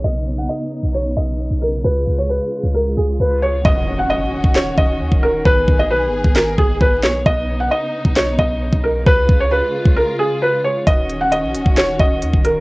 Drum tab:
HH |x-x-x-x-x---x-x-|x---x-x-x-xxx-x-|----------------|----------------|
CP |----------------|----------------|--------x-------|--------x-----x-|
SD |----------------|----------------|--------o-------|--------o-----o-|
BD |----------------|----------------|o------o--o--o--|o-o----o--o-o---|

HH |----------------|----------------|x-x-x-x-x---x-x-|
CP |--------x-------|----------------|--------x-------|
SD |--------o-------|----------------|--------o-------|
BD |o------o--o--o--|o-o----o--------|o------o--o--o--|